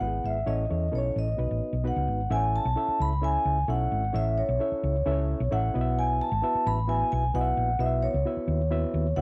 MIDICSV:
0, 0, Header, 1, 5, 480
1, 0, Start_track
1, 0, Tempo, 458015
1, 488, Time_signature, 4, 2, 24, 8
1, 9655, End_track
2, 0, Start_track
2, 0, Title_t, "Vibraphone"
2, 0, Program_c, 0, 11
2, 0, Note_on_c, 0, 78, 100
2, 269, Note_on_c, 0, 76, 89
2, 274, Note_off_c, 0, 78, 0
2, 500, Note_on_c, 0, 75, 90
2, 506, Note_off_c, 0, 76, 0
2, 992, Note_off_c, 0, 75, 0
2, 999, Note_on_c, 0, 73, 83
2, 1211, Note_off_c, 0, 73, 0
2, 1243, Note_on_c, 0, 75, 81
2, 1910, Note_off_c, 0, 75, 0
2, 1964, Note_on_c, 0, 78, 84
2, 2433, Note_on_c, 0, 80, 94
2, 2447, Note_off_c, 0, 78, 0
2, 2674, Note_off_c, 0, 80, 0
2, 2679, Note_on_c, 0, 81, 99
2, 3118, Note_off_c, 0, 81, 0
2, 3161, Note_on_c, 0, 83, 104
2, 3398, Note_off_c, 0, 83, 0
2, 3400, Note_on_c, 0, 80, 99
2, 3838, Note_off_c, 0, 80, 0
2, 3876, Note_on_c, 0, 78, 92
2, 4356, Note_on_c, 0, 76, 100
2, 4363, Note_off_c, 0, 78, 0
2, 4586, Note_on_c, 0, 73, 97
2, 4596, Note_off_c, 0, 76, 0
2, 5791, Note_on_c, 0, 78, 92
2, 5818, Note_off_c, 0, 73, 0
2, 6274, Note_on_c, 0, 80, 97
2, 6278, Note_off_c, 0, 78, 0
2, 6512, Note_off_c, 0, 80, 0
2, 6513, Note_on_c, 0, 81, 109
2, 6991, Note_on_c, 0, 83, 98
2, 6998, Note_off_c, 0, 81, 0
2, 7223, Note_on_c, 0, 80, 97
2, 7230, Note_off_c, 0, 83, 0
2, 7450, Note_off_c, 0, 80, 0
2, 7462, Note_on_c, 0, 80, 91
2, 7702, Note_on_c, 0, 78, 94
2, 7705, Note_off_c, 0, 80, 0
2, 8180, Note_on_c, 0, 76, 88
2, 8190, Note_off_c, 0, 78, 0
2, 8412, Note_on_c, 0, 73, 93
2, 8422, Note_off_c, 0, 76, 0
2, 9603, Note_on_c, 0, 78, 93
2, 9642, Note_off_c, 0, 73, 0
2, 9655, Note_off_c, 0, 78, 0
2, 9655, End_track
3, 0, Start_track
3, 0, Title_t, "Reed electric piano"
3, 0, Program_c, 1, 4
3, 5, Note_on_c, 1, 59, 68
3, 12, Note_on_c, 1, 64, 64
3, 14, Note_on_c, 1, 66, 52
3, 18, Note_on_c, 1, 71, 76
3, 67, Note_off_c, 1, 66, 0
3, 73, Note_on_c, 1, 68, 65
3, 373, Note_off_c, 1, 59, 0
3, 377, Note_off_c, 1, 64, 0
3, 380, Note_off_c, 1, 71, 0
3, 407, Note_off_c, 1, 68, 0
3, 484, Note_on_c, 1, 61, 89
3, 487, Note_on_c, 1, 64, 83
3, 492, Note_on_c, 1, 69, 82
3, 494, Note_on_c, 1, 73, 96
3, 670, Note_off_c, 1, 61, 0
3, 672, Note_off_c, 1, 64, 0
3, 674, Note_off_c, 1, 69, 0
3, 675, Note_off_c, 1, 73, 0
3, 725, Note_on_c, 1, 61, 61
3, 732, Note_on_c, 1, 64, 56
3, 736, Note_on_c, 1, 69, 55
3, 740, Note_on_c, 1, 73, 70
3, 912, Note_off_c, 1, 61, 0
3, 915, Note_off_c, 1, 64, 0
3, 917, Note_off_c, 1, 69, 0
3, 919, Note_off_c, 1, 73, 0
3, 959, Note_on_c, 1, 61, 67
3, 964, Note_on_c, 1, 64, 62
3, 966, Note_on_c, 1, 69, 60
3, 972, Note_on_c, 1, 71, 63
3, 1030, Note_off_c, 1, 71, 0
3, 1031, Note_on_c, 1, 73, 76
3, 1333, Note_off_c, 1, 61, 0
3, 1335, Note_off_c, 1, 64, 0
3, 1336, Note_off_c, 1, 69, 0
3, 1369, Note_off_c, 1, 73, 0
3, 1436, Note_on_c, 1, 59, 60
3, 1445, Note_on_c, 1, 63, 60
3, 1448, Note_on_c, 1, 66, 60
3, 1455, Note_on_c, 1, 71, 74
3, 1812, Note_off_c, 1, 59, 0
3, 1817, Note_off_c, 1, 63, 0
3, 1819, Note_off_c, 1, 66, 0
3, 1822, Note_off_c, 1, 71, 0
3, 1928, Note_on_c, 1, 59, 81
3, 1931, Note_on_c, 1, 63, 70
3, 1932, Note_on_c, 1, 66, 75
3, 1940, Note_on_c, 1, 71, 87
3, 2299, Note_off_c, 1, 59, 0
3, 2301, Note_off_c, 1, 63, 0
3, 2301, Note_off_c, 1, 66, 0
3, 2305, Note_off_c, 1, 71, 0
3, 2409, Note_on_c, 1, 61, 72
3, 2412, Note_on_c, 1, 64, 72
3, 2417, Note_on_c, 1, 69, 70
3, 2421, Note_on_c, 1, 76, 87
3, 2422, Note_on_c, 1, 72, 53
3, 2478, Note_off_c, 1, 72, 0
3, 2479, Note_on_c, 1, 73, 70
3, 2780, Note_off_c, 1, 61, 0
3, 2782, Note_off_c, 1, 64, 0
3, 2784, Note_off_c, 1, 69, 0
3, 2786, Note_off_c, 1, 76, 0
3, 2815, Note_off_c, 1, 73, 0
3, 2890, Note_on_c, 1, 61, 73
3, 2893, Note_on_c, 1, 64, 68
3, 2897, Note_on_c, 1, 69, 67
3, 2901, Note_on_c, 1, 73, 68
3, 2907, Note_on_c, 1, 76, 81
3, 3261, Note_off_c, 1, 61, 0
3, 3263, Note_off_c, 1, 64, 0
3, 3265, Note_off_c, 1, 69, 0
3, 3267, Note_off_c, 1, 73, 0
3, 3269, Note_off_c, 1, 76, 0
3, 3369, Note_on_c, 1, 61, 70
3, 3375, Note_on_c, 1, 64, 68
3, 3379, Note_on_c, 1, 69, 62
3, 3383, Note_on_c, 1, 73, 68
3, 3385, Note_on_c, 1, 76, 81
3, 3741, Note_off_c, 1, 61, 0
3, 3744, Note_off_c, 1, 64, 0
3, 3746, Note_off_c, 1, 69, 0
3, 3748, Note_off_c, 1, 73, 0
3, 3749, Note_off_c, 1, 76, 0
3, 3855, Note_on_c, 1, 61, 72
3, 3859, Note_on_c, 1, 64, 69
3, 3860, Note_on_c, 1, 69, 69
3, 3864, Note_on_c, 1, 73, 70
3, 3869, Note_on_c, 1, 76, 77
3, 4224, Note_off_c, 1, 61, 0
3, 4226, Note_off_c, 1, 64, 0
3, 4226, Note_off_c, 1, 69, 0
3, 4228, Note_off_c, 1, 73, 0
3, 4231, Note_off_c, 1, 76, 0
3, 4324, Note_on_c, 1, 61, 75
3, 4328, Note_on_c, 1, 64, 65
3, 4334, Note_on_c, 1, 69, 66
3, 4339, Note_on_c, 1, 73, 71
3, 4342, Note_on_c, 1, 76, 85
3, 4698, Note_off_c, 1, 61, 0
3, 4700, Note_off_c, 1, 64, 0
3, 4703, Note_off_c, 1, 69, 0
3, 4705, Note_off_c, 1, 73, 0
3, 4707, Note_off_c, 1, 76, 0
3, 4814, Note_on_c, 1, 61, 73
3, 4821, Note_on_c, 1, 64, 71
3, 4821, Note_on_c, 1, 69, 71
3, 4828, Note_on_c, 1, 73, 68
3, 4831, Note_on_c, 1, 76, 79
3, 5182, Note_off_c, 1, 61, 0
3, 5186, Note_off_c, 1, 64, 0
3, 5186, Note_off_c, 1, 69, 0
3, 5190, Note_off_c, 1, 73, 0
3, 5191, Note_off_c, 1, 76, 0
3, 5298, Note_on_c, 1, 61, 90
3, 5301, Note_on_c, 1, 64, 81
3, 5303, Note_on_c, 1, 69, 81
3, 5307, Note_on_c, 1, 71, 61
3, 5313, Note_on_c, 1, 76, 91
3, 5361, Note_off_c, 1, 71, 0
3, 5364, Note_on_c, 1, 73, 82
3, 5664, Note_off_c, 1, 61, 0
3, 5665, Note_off_c, 1, 64, 0
3, 5666, Note_off_c, 1, 69, 0
3, 5671, Note_off_c, 1, 76, 0
3, 5697, Note_off_c, 1, 73, 0
3, 5774, Note_on_c, 1, 61, 72
3, 5774, Note_on_c, 1, 64, 68
3, 5781, Note_on_c, 1, 69, 68
3, 5787, Note_on_c, 1, 73, 67
3, 5788, Note_on_c, 1, 76, 87
3, 6011, Note_off_c, 1, 64, 0
3, 6015, Note_on_c, 1, 59, 83
3, 6016, Note_off_c, 1, 61, 0
3, 6020, Note_off_c, 1, 69, 0
3, 6023, Note_off_c, 1, 73, 0
3, 6023, Note_off_c, 1, 76, 0
3, 6023, Note_on_c, 1, 64, 72
3, 6026, Note_on_c, 1, 66, 71
3, 6027, Note_on_c, 1, 71, 72
3, 6033, Note_on_c, 1, 75, 69
3, 6083, Note_off_c, 1, 75, 0
3, 6089, Note_on_c, 1, 76, 90
3, 6591, Note_off_c, 1, 59, 0
3, 6595, Note_off_c, 1, 64, 0
3, 6597, Note_off_c, 1, 66, 0
3, 6597, Note_off_c, 1, 71, 0
3, 6629, Note_off_c, 1, 76, 0
3, 6730, Note_on_c, 1, 59, 75
3, 6738, Note_on_c, 1, 64, 72
3, 6743, Note_on_c, 1, 66, 67
3, 6745, Note_on_c, 1, 76, 89
3, 6746, Note_on_c, 1, 71, 75
3, 7098, Note_off_c, 1, 59, 0
3, 7102, Note_off_c, 1, 64, 0
3, 7104, Note_off_c, 1, 66, 0
3, 7105, Note_off_c, 1, 76, 0
3, 7106, Note_off_c, 1, 71, 0
3, 7205, Note_on_c, 1, 59, 73
3, 7208, Note_on_c, 1, 64, 66
3, 7215, Note_on_c, 1, 66, 69
3, 7220, Note_on_c, 1, 71, 67
3, 7220, Note_on_c, 1, 76, 78
3, 7574, Note_off_c, 1, 59, 0
3, 7576, Note_off_c, 1, 64, 0
3, 7579, Note_off_c, 1, 66, 0
3, 7582, Note_off_c, 1, 71, 0
3, 7582, Note_off_c, 1, 76, 0
3, 7694, Note_on_c, 1, 59, 73
3, 7697, Note_on_c, 1, 64, 69
3, 7700, Note_on_c, 1, 66, 72
3, 7701, Note_on_c, 1, 71, 74
3, 7708, Note_on_c, 1, 75, 67
3, 7758, Note_off_c, 1, 75, 0
3, 7764, Note_on_c, 1, 76, 79
3, 8058, Note_off_c, 1, 59, 0
3, 8059, Note_off_c, 1, 64, 0
3, 8061, Note_off_c, 1, 66, 0
3, 8061, Note_off_c, 1, 71, 0
3, 8093, Note_off_c, 1, 76, 0
3, 8169, Note_on_c, 1, 59, 79
3, 8169, Note_on_c, 1, 64, 70
3, 8173, Note_on_c, 1, 66, 73
3, 8177, Note_on_c, 1, 71, 69
3, 8184, Note_on_c, 1, 75, 67
3, 8235, Note_off_c, 1, 75, 0
3, 8236, Note_on_c, 1, 76, 85
3, 8534, Note_off_c, 1, 59, 0
3, 8534, Note_off_c, 1, 64, 0
3, 8536, Note_off_c, 1, 66, 0
3, 8538, Note_off_c, 1, 71, 0
3, 8568, Note_off_c, 1, 76, 0
3, 8650, Note_on_c, 1, 59, 73
3, 8653, Note_on_c, 1, 64, 67
3, 8653, Note_on_c, 1, 66, 69
3, 8660, Note_on_c, 1, 71, 67
3, 8665, Note_on_c, 1, 76, 82
3, 9014, Note_off_c, 1, 59, 0
3, 9015, Note_off_c, 1, 66, 0
3, 9016, Note_off_c, 1, 64, 0
3, 9019, Note_off_c, 1, 71, 0
3, 9022, Note_off_c, 1, 76, 0
3, 9124, Note_on_c, 1, 59, 81
3, 9125, Note_on_c, 1, 64, 76
3, 9131, Note_on_c, 1, 66, 77
3, 9131, Note_on_c, 1, 71, 80
3, 9137, Note_on_c, 1, 76, 95
3, 9490, Note_off_c, 1, 59, 0
3, 9490, Note_off_c, 1, 64, 0
3, 9493, Note_off_c, 1, 66, 0
3, 9493, Note_off_c, 1, 71, 0
3, 9496, Note_off_c, 1, 76, 0
3, 9606, Note_on_c, 1, 59, 70
3, 9608, Note_on_c, 1, 64, 67
3, 9610, Note_on_c, 1, 66, 68
3, 9614, Note_on_c, 1, 71, 63
3, 9618, Note_on_c, 1, 76, 79
3, 9655, Note_off_c, 1, 59, 0
3, 9655, Note_off_c, 1, 64, 0
3, 9655, Note_off_c, 1, 66, 0
3, 9655, Note_off_c, 1, 71, 0
3, 9655, Note_off_c, 1, 76, 0
3, 9655, End_track
4, 0, Start_track
4, 0, Title_t, "Fingered electric bass"
4, 0, Program_c, 2, 33
4, 8, Note_on_c, 2, 32, 93
4, 195, Note_off_c, 2, 32, 0
4, 252, Note_on_c, 2, 32, 80
4, 439, Note_off_c, 2, 32, 0
4, 489, Note_on_c, 2, 33, 103
4, 678, Note_off_c, 2, 33, 0
4, 739, Note_on_c, 2, 40, 83
4, 924, Note_off_c, 2, 40, 0
4, 972, Note_on_c, 2, 35, 73
4, 1160, Note_off_c, 2, 35, 0
4, 1215, Note_on_c, 2, 33, 78
4, 1403, Note_off_c, 2, 33, 0
4, 1453, Note_on_c, 2, 35, 90
4, 1548, Note_off_c, 2, 35, 0
4, 1580, Note_on_c, 2, 33, 79
4, 1673, Note_off_c, 2, 33, 0
4, 1811, Note_on_c, 2, 35, 83
4, 2001, Note_off_c, 2, 35, 0
4, 2057, Note_on_c, 2, 37, 84
4, 2151, Note_off_c, 2, 37, 0
4, 2177, Note_on_c, 2, 32, 81
4, 2365, Note_off_c, 2, 32, 0
4, 2414, Note_on_c, 2, 33, 112
4, 2698, Note_off_c, 2, 33, 0
4, 2780, Note_on_c, 2, 35, 101
4, 2874, Note_off_c, 2, 35, 0
4, 3144, Note_on_c, 2, 37, 90
4, 3518, Note_off_c, 2, 37, 0
4, 3619, Note_on_c, 2, 37, 93
4, 3807, Note_off_c, 2, 37, 0
4, 3856, Note_on_c, 2, 35, 99
4, 4045, Note_off_c, 2, 35, 0
4, 4105, Note_on_c, 2, 32, 84
4, 4291, Note_off_c, 2, 32, 0
4, 4341, Note_on_c, 2, 33, 108
4, 4622, Note_off_c, 2, 33, 0
4, 4702, Note_on_c, 2, 35, 90
4, 4795, Note_off_c, 2, 35, 0
4, 5067, Note_on_c, 2, 37, 89
4, 5252, Note_off_c, 2, 37, 0
4, 5303, Note_on_c, 2, 37, 93
4, 5582, Note_off_c, 2, 37, 0
4, 5662, Note_on_c, 2, 35, 98
4, 5755, Note_off_c, 2, 35, 0
4, 5783, Note_on_c, 2, 33, 97
4, 5969, Note_off_c, 2, 33, 0
4, 6030, Note_on_c, 2, 35, 94
4, 6493, Note_off_c, 2, 35, 0
4, 6620, Note_on_c, 2, 32, 97
4, 6712, Note_off_c, 2, 32, 0
4, 6985, Note_on_c, 2, 33, 96
4, 7355, Note_off_c, 2, 33, 0
4, 7468, Note_on_c, 2, 35, 101
4, 7650, Note_off_c, 2, 35, 0
4, 7698, Note_on_c, 2, 35, 101
4, 7883, Note_off_c, 2, 35, 0
4, 7934, Note_on_c, 2, 34, 94
4, 8120, Note_off_c, 2, 34, 0
4, 8164, Note_on_c, 2, 35, 103
4, 8447, Note_off_c, 2, 35, 0
4, 8532, Note_on_c, 2, 37, 89
4, 8625, Note_off_c, 2, 37, 0
4, 8883, Note_on_c, 2, 39, 96
4, 9258, Note_off_c, 2, 39, 0
4, 9368, Note_on_c, 2, 39, 89
4, 9554, Note_off_c, 2, 39, 0
4, 9606, Note_on_c, 2, 37, 97
4, 9655, Note_off_c, 2, 37, 0
4, 9655, End_track
5, 0, Start_track
5, 0, Title_t, "Muted fingered electric bass strokes"
5, 3020, Note_on_c, 9, 29, 51
5, 3125, Note_off_c, 9, 29, 0
5, 4944, Note_on_c, 9, 29, 51
5, 5049, Note_off_c, 9, 29, 0
5, 6864, Note_on_c, 9, 29, 51
5, 6969, Note_off_c, 9, 29, 0
5, 8770, Note_on_c, 9, 29, 49
5, 8875, Note_off_c, 9, 29, 0
5, 9655, End_track
0, 0, End_of_file